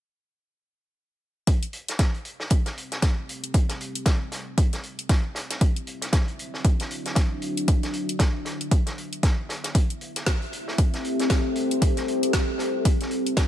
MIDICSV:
0, 0, Header, 1, 3, 480
1, 0, Start_track
1, 0, Tempo, 517241
1, 1368, Time_signature, 4, 2, 24, 8
1, 12507, End_track
2, 0, Start_track
2, 0, Title_t, "Ambient pad"
2, 0, Program_c, 0, 92
2, 1367, Note_on_c, 0, 67, 77
2, 1368, Note_on_c, 0, 60, 83
2, 1368, Note_on_c, 0, 69, 75
2, 1368, Note_on_c, 0, 76, 90
2, 5170, Note_off_c, 0, 60, 0
2, 5170, Note_off_c, 0, 67, 0
2, 5171, Note_off_c, 0, 69, 0
2, 5207, Note_on_c, 0, 66, 75
2, 5207, Note_on_c, 0, 72, 76
2, 5208, Note_on_c, 0, 62, 84
2, 7108, Note_off_c, 0, 72, 0
2, 7128, Note_on_c, 0, 71, 75
2, 9010, Note_off_c, 0, 62, 0
2, 9010, Note_off_c, 0, 66, 0
2, 9028, Note_off_c, 0, 71, 0
2, 9048, Note_on_c, 0, 60, 82
2, 9048, Note_on_c, 0, 67, 78
2, 9048, Note_on_c, 0, 69, 77
2, 12507, Note_off_c, 0, 60, 0
2, 12507, Note_off_c, 0, 67, 0
2, 12507, Note_off_c, 0, 69, 0
2, 12507, Note_off_c, 0, 76, 0
2, 12507, End_track
3, 0, Start_track
3, 0, Title_t, "Drums"
3, 1366, Note_on_c, 9, 42, 83
3, 1367, Note_off_c, 9, 42, 0
3, 1367, Note_on_c, 9, 36, 105
3, 1367, Note_on_c, 9, 42, 77
3, 1460, Note_off_c, 9, 36, 0
3, 1460, Note_off_c, 9, 42, 0
3, 1509, Note_on_c, 9, 42, 37
3, 1601, Note_off_c, 9, 42, 0
3, 1604, Note_on_c, 9, 42, 65
3, 1697, Note_off_c, 9, 42, 0
3, 1749, Note_on_c, 9, 42, 52
3, 1756, Note_on_c, 9, 38, 41
3, 1842, Note_off_c, 9, 42, 0
3, 1847, Note_off_c, 9, 38, 0
3, 1847, Note_on_c, 9, 36, 95
3, 1847, Note_on_c, 9, 38, 109
3, 1847, Note_on_c, 9, 42, 77
3, 1850, Note_off_c, 9, 42, 0
3, 1850, Note_on_c, 9, 42, 83
3, 1940, Note_off_c, 9, 36, 0
3, 1940, Note_off_c, 9, 38, 0
3, 1943, Note_off_c, 9, 42, 0
3, 1988, Note_on_c, 9, 42, 40
3, 2081, Note_off_c, 9, 42, 0
3, 2086, Note_on_c, 9, 42, 61
3, 2179, Note_off_c, 9, 42, 0
3, 2225, Note_on_c, 9, 38, 48
3, 2318, Note_off_c, 9, 38, 0
3, 2320, Note_on_c, 9, 42, 76
3, 2327, Note_off_c, 9, 42, 0
3, 2327, Note_on_c, 9, 36, 115
3, 2327, Note_on_c, 9, 42, 76
3, 2420, Note_off_c, 9, 36, 0
3, 2420, Note_off_c, 9, 42, 0
3, 2467, Note_on_c, 9, 38, 43
3, 2469, Note_on_c, 9, 42, 35
3, 2560, Note_off_c, 9, 38, 0
3, 2562, Note_off_c, 9, 42, 0
3, 2575, Note_on_c, 9, 42, 56
3, 2667, Note_off_c, 9, 42, 0
3, 2708, Note_on_c, 9, 38, 50
3, 2709, Note_on_c, 9, 42, 35
3, 2801, Note_off_c, 9, 38, 0
3, 2802, Note_off_c, 9, 42, 0
3, 2805, Note_on_c, 9, 38, 104
3, 2807, Note_on_c, 9, 36, 103
3, 2807, Note_on_c, 9, 42, 78
3, 2813, Note_off_c, 9, 42, 0
3, 2813, Note_on_c, 9, 42, 77
3, 2898, Note_off_c, 9, 38, 0
3, 2900, Note_off_c, 9, 36, 0
3, 2905, Note_off_c, 9, 42, 0
3, 3052, Note_on_c, 9, 42, 69
3, 3145, Note_off_c, 9, 42, 0
3, 3189, Note_on_c, 9, 42, 52
3, 3282, Note_off_c, 9, 42, 0
3, 3283, Note_on_c, 9, 42, 89
3, 3287, Note_on_c, 9, 36, 113
3, 3288, Note_off_c, 9, 42, 0
3, 3288, Note_on_c, 9, 42, 73
3, 3380, Note_off_c, 9, 36, 0
3, 3380, Note_off_c, 9, 42, 0
3, 3425, Note_on_c, 9, 38, 38
3, 3430, Note_on_c, 9, 42, 35
3, 3518, Note_off_c, 9, 38, 0
3, 3522, Note_off_c, 9, 42, 0
3, 3531, Note_on_c, 9, 42, 64
3, 3624, Note_off_c, 9, 42, 0
3, 3670, Note_on_c, 9, 42, 51
3, 3762, Note_off_c, 9, 42, 0
3, 3764, Note_on_c, 9, 38, 109
3, 3764, Note_on_c, 9, 42, 84
3, 3767, Note_off_c, 9, 42, 0
3, 3767, Note_on_c, 9, 36, 94
3, 3767, Note_on_c, 9, 42, 71
3, 3857, Note_off_c, 9, 38, 0
3, 3860, Note_off_c, 9, 36, 0
3, 3860, Note_off_c, 9, 42, 0
3, 4006, Note_on_c, 9, 42, 65
3, 4007, Note_on_c, 9, 38, 39
3, 4099, Note_off_c, 9, 42, 0
3, 4100, Note_off_c, 9, 38, 0
3, 4247, Note_on_c, 9, 36, 115
3, 4247, Note_on_c, 9, 42, 74
3, 4248, Note_off_c, 9, 42, 0
3, 4248, Note_on_c, 9, 42, 75
3, 4340, Note_off_c, 9, 36, 0
3, 4341, Note_off_c, 9, 42, 0
3, 4389, Note_on_c, 9, 42, 36
3, 4391, Note_on_c, 9, 38, 35
3, 4482, Note_off_c, 9, 42, 0
3, 4484, Note_off_c, 9, 38, 0
3, 4485, Note_on_c, 9, 42, 55
3, 4578, Note_off_c, 9, 42, 0
3, 4629, Note_on_c, 9, 42, 34
3, 4722, Note_off_c, 9, 42, 0
3, 4725, Note_on_c, 9, 42, 88
3, 4727, Note_off_c, 9, 42, 0
3, 4727, Note_on_c, 9, 36, 107
3, 4727, Note_on_c, 9, 38, 109
3, 4727, Note_on_c, 9, 42, 74
3, 4820, Note_off_c, 9, 36, 0
3, 4820, Note_off_c, 9, 38, 0
3, 4820, Note_off_c, 9, 42, 0
3, 4963, Note_on_c, 9, 38, 50
3, 4970, Note_on_c, 9, 42, 68
3, 5056, Note_off_c, 9, 38, 0
3, 5063, Note_off_c, 9, 42, 0
3, 5109, Note_on_c, 9, 38, 47
3, 5109, Note_on_c, 9, 42, 50
3, 5202, Note_off_c, 9, 38, 0
3, 5202, Note_off_c, 9, 42, 0
3, 5204, Note_on_c, 9, 42, 88
3, 5207, Note_off_c, 9, 42, 0
3, 5207, Note_on_c, 9, 36, 112
3, 5207, Note_on_c, 9, 42, 74
3, 5300, Note_off_c, 9, 36, 0
3, 5300, Note_off_c, 9, 42, 0
3, 5349, Note_on_c, 9, 42, 33
3, 5442, Note_off_c, 9, 42, 0
3, 5446, Note_on_c, 9, 42, 62
3, 5539, Note_off_c, 9, 42, 0
3, 5583, Note_on_c, 9, 38, 41
3, 5589, Note_on_c, 9, 42, 48
3, 5675, Note_off_c, 9, 38, 0
3, 5682, Note_off_c, 9, 42, 0
3, 5685, Note_on_c, 9, 38, 108
3, 5687, Note_on_c, 9, 36, 93
3, 5687, Note_on_c, 9, 42, 75
3, 5688, Note_off_c, 9, 42, 0
3, 5688, Note_on_c, 9, 42, 70
3, 5777, Note_off_c, 9, 38, 0
3, 5780, Note_off_c, 9, 36, 0
3, 5780, Note_off_c, 9, 42, 0
3, 5825, Note_on_c, 9, 42, 42
3, 5918, Note_off_c, 9, 42, 0
3, 5930, Note_on_c, 9, 42, 67
3, 6023, Note_off_c, 9, 42, 0
3, 6068, Note_on_c, 9, 38, 43
3, 6161, Note_off_c, 9, 38, 0
3, 6167, Note_on_c, 9, 36, 119
3, 6167, Note_on_c, 9, 42, 73
3, 6172, Note_off_c, 9, 42, 0
3, 6172, Note_on_c, 9, 42, 77
3, 6260, Note_off_c, 9, 36, 0
3, 6264, Note_off_c, 9, 42, 0
3, 6309, Note_on_c, 9, 42, 35
3, 6317, Note_on_c, 9, 38, 45
3, 6402, Note_off_c, 9, 42, 0
3, 6409, Note_on_c, 9, 42, 67
3, 6410, Note_off_c, 9, 38, 0
3, 6501, Note_off_c, 9, 42, 0
3, 6549, Note_on_c, 9, 42, 34
3, 6551, Note_on_c, 9, 38, 48
3, 6639, Note_off_c, 9, 38, 0
3, 6639, Note_on_c, 9, 38, 109
3, 6642, Note_off_c, 9, 42, 0
3, 6647, Note_on_c, 9, 36, 107
3, 6647, Note_on_c, 9, 42, 70
3, 6648, Note_off_c, 9, 42, 0
3, 6648, Note_on_c, 9, 42, 83
3, 6732, Note_off_c, 9, 38, 0
3, 6740, Note_off_c, 9, 36, 0
3, 6741, Note_off_c, 9, 42, 0
3, 6883, Note_on_c, 9, 42, 61
3, 6976, Note_off_c, 9, 42, 0
3, 7029, Note_on_c, 9, 42, 51
3, 7121, Note_off_c, 9, 42, 0
3, 7124, Note_on_c, 9, 42, 79
3, 7127, Note_off_c, 9, 42, 0
3, 7127, Note_on_c, 9, 36, 108
3, 7127, Note_on_c, 9, 42, 75
3, 7220, Note_off_c, 9, 36, 0
3, 7220, Note_off_c, 9, 42, 0
3, 7269, Note_on_c, 9, 42, 33
3, 7271, Note_on_c, 9, 38, 38
3, 7362, Note_off_c, 9, 42, 0
3, 7362, Note_on_c, 9, 42, 61
3, 7363, Note_off_c, 9, 38, 0
3, 7455, Note_off_c, 9, 42, 0
3, 7509, Note_on_c, 9, 42, 48
3, 7602, Note_off_c, 9, 42, 0
3, 7602, Note_on_c, 9, 38, 121
3, 7604, Note_on_c, 9, 42, 90
3, 7607, Note_off_c, 9, 42, 0
3, 7607, Note_on_c, 9, 36, 92
3, 7607, Note_on_c, 9, 42, 66
3, 7694, Note_off_c, 9, 38, 0
3, 7700, Note_off_c, 9, 36, 0
3, 7700, Note_off_c, 9, 42, 0
3, 7844, Note_on_c, 9, 38, 38
3, 7846, Note_on_c, 9, 42, 60
3, 7936, Note_off_c, 9, 38, 0
3, 7939, Note_off_c, 9, 42, 0
3, 7989, Note_on_c, 9, 42, 33
3, 8082, Note_off_c, 9, 42, 0
3, 8087, Note_on_c, 9, 36, 117
3, 8087, Note_on_c, 9, 42, 73
3, 8088, Note_off_c, 9, 42, 0
3, 8088, Note_on_c, 9, 42, 76
3, 8180, Note_off_c, 9, 36, 0
3, 8180, Note_off_c, 9, 42, 0
3, 8227, Note_on_c, 9, 38, 35
3, 8229, Note_on_c, 9, 42, 33
3, 8320, Note_off_c, 9, 38, 0
3, 8322, Note_off_c, 9, 42, 0
3, 8331, Note_on_c, 9, 42, 58
3, 8424, Note_off_c, 9, 42, 0
3, 8469, Note_on_c, 9, 42, 32
3, 8562, Note_off_c, 9, 42, 0
3, 8564, Note_on_c, 9, 42, 80
3, 8567, Note_off_c, 9, 42, 0
3, 8567, Note_on_c, 9, 36, 109
3, 8567, Note_on_c, 9, 42, 70
3, 8568, Note_on_c, 9, 38, 108
3, 8660, Note_off_c, 9, 36, 0
3, 8660, Note_off_c, 9, 42, 0
3, 8661, Note_off_c, 9, 38, 0
3, 8809, Note_on_c, 9, 38, 47
3, 8814, Note_on_c, 9, 42, 64
3, 8901, Note_off_c, 9, 38, 0
3, 8906, Note_off_c, 9, 42, 0
3, 8944, Note_on_c, 9, 38, 46
3, 8949, Note_on_c, 9, 42, 47
3, 9037, Note_off_c, 9, 38, 0
3, 9042, Note_off_c, 9, 42, 0
3, 9047, Note_on_c, 9, 36, 104
3, 9048, Note_on_c, 9, 42, 73
3, 9052, Note_off_c, 9, 42, 0
3, 9052, Note_on_c, 9, 42, 90
3, 9140, Note_off_c, 9, 36, 0
3, 9144, Note_off_c, 9, 42, 0
3, 9190, Note_on_c, 9, 42, 33
3, 9283, Note_off_c, 9, 42, 0
3, 9289, Note_on_c, 9, 42, 55
3, 9381, Note_off_c, 9, 42, 0
3, 9430, Note_on_c, 9, 38, 37
3, 9430, Note_on_c, 9, 42, 48
3, 9522, Note_off_c, 9, 42, 0
3, 9523, Note_off_c, 9, 38, 0
3, 9524, Note_on_c, 9, 42, 81
3, 9526, Note_on_c, 9, 38, 101
3, 9527, Note_on_c, 9, 36, 96
3, 9528, Note_off_c, 9, 42, 0
3, 9528, Note_on_c, 9, 42, 71
3, 9531, Note_off_c, 9, 38, 0
3, 9531, Note_on_c, 9, 38, 106
3, 9620, Note_off_c, 9, 36, 0
3, 9621, Note_off_c, 9, 42, 0
3, 9624, Note_off_c, 9, 38, 0
3, 9668, Note_on_c, 9, 42, 40
3, 9760, Note_off_c, 9, 42, 0
3, 9769, Note_on_c, 9, 42, 64
3, 9862, Note_off_c, 9, 42, 0
3, 9909, Note_on_c, 9, 38, 47
3, 10002, Note_off_c, 9, 38, 0
3, 10005, Note_on_c, 9, 42, 73
3, 10007, Note_on_c, 9, 36, 111
3, 10008, Note_off_c, 9, 42, 0
3, 10008, Note_on_c, 9, 42, 70
3, 10100, Note_off_c, 9, 36, 0
3, 10100, Note_off_c, 9, 42, 0
3, 10150, Note_on_c, 9, 42, 32
3, 10152, Note_on_c, 9, 38, 42
3, 10242, Note_off_c, 9, 42, 0
3, 10245, Note_off_c, 9, 38, 0
3, 10249, Note_on_c, 9, 42, 65
3, 10342, Note_off_c, 9, 42, 0
3, 10389, Note_on_c, 9, 42, 34
3, 10394, Note_on_c, 9, 38, 50
3, 10482, Note_off_c, 9, 42, 0
3, 10485, Note_off_c, 9, 38, 0
3, 10485, Note_on_c, 9, 38, 104
3, 10486, Note_on_c, 9, 42, 88
3, 10487, Note_on_c, 9, 36, 102
3, 10488, Note_off_c, 9, 42, 0
3, 10488, Note_on_c, 9, 42, 70
3, 10490, Note_off_c, 9, 38, 0
3, 10490, Note_on_c, 9, 38, 111
3, 10580, Note_off_c, 9, 36, 0
3, 10581, Note_off_c, 9, 42, 0
3, 10582, Note_off_c, 9, 38, 0
3, 10722, Note_on_c, 9, 42, 68
3, 10815, Note_off_c, 9, 42, 0
3, 10869, Note_on_c, 9, 42, 49
3, 10962, Note_off_c, 9, 42, 0
3, 10967, Note_on_c, 9, 36, 101
3, 10968, Note_on_c, 9, 42, 76
3, 10970, Note_off_c, 9, 42, 0
3, 10970, Note_on_c, 9, 42, 85
3, 11060, Note_off_c, 9, 36, 0
3, 11063, Note_off_c, 9, 42, 0
3, 11107, Note_on_c, 9, 38, 39
3, 11110, Note_on_c, 9, 42, 34
3, 11200, Note_off_c, 9, 38, 0
3, 11203, Note_off_c, 9, 42, 0
3, 11210, Note_on_c, 9, 42, 60
3, 11303, Note_off_c, 9, 42, 0
3, 11350, Note_on_c, 9, 42, 50
3, 11443, Note_off_c, 9, 42, 0
3, 11446, Note_on_c, 9, 38, 107
3, 11447, Note_on_c, 9, 36, 90
3, 11448, Note_off_c, 9, 38, 0
3, 11448, Note_on_c, 9, 38, 117
3, 11448, Note_on_c, 9, 42, 82
3, 11540, Note_off_c, 9, 36, 0
3, 11541, Note_off_c, 9, 38, 0
3, 11541, Note_off_c, 9, 42, 0
3, 11675, Note_on_c, 9, 38, 41
3, 11691, Note_on_c, 9, 42, 62
3, 11768, Note_off_c, 9, 38, 0
3, 11784, Note_off_c, 9, 42, 0
3, 11927, Note_on_c, 9, 36, 105
3, 11927, Note_on_c, 9, 42, 70
3, 12020, Note_off_c, 9, 36, 0
3, 12020, Note_off_c, 9, 42, 0
3, 12070, Note_on_c, 9, 42, 34
3, 12080, Note_on_c, 9, 38, 34
3, 12163, Note_off_c, 9, 42, 0
3, 12163, Note_on_c, 9, 42, 58
3, 12172, Note_off_c, 9, 38, 0
3, 12255, Note_off_c, 9, 42, 0
3, 12310, Note_on_c, 9, 42, 36
3, 12403, Note_off_c, 9, 42, 0
3, 12406, Note_on_c, 9, 38, 107
3, 12407, Note_on_c, 9, 36, 100
3, 12408, Note_on_c, 9, 42, 74
3, 12410, Note_off_c, 9, 42, 0
3, 12410, Note_on_c, 9, 42, 79
3, 12412, Note_off_c, 9, 38, 0
3, 12412, Note_on_c, 9, 38, 102
3, 12500, Note_off_c, 9, 36, 0
3, 12503, Note_off_c, 9, 42, 0
3, 12505, Note_off_c, 9, 38, 0
3, 12507, End_track
0, 0, End_of_file